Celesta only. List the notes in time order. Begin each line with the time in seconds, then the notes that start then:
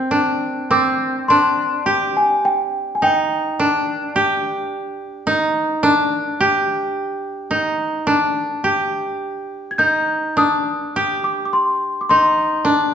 Already playing: G5
0.71 D6
1.28 C6
2.17 G#5
2.45 G5
2.95 G#5
3.04 G5
9.71 G#6
9.78 G6
10.38 D#6
11.24 D6
11.45 D6
11.53 C6
12.01 D6
12.09 C6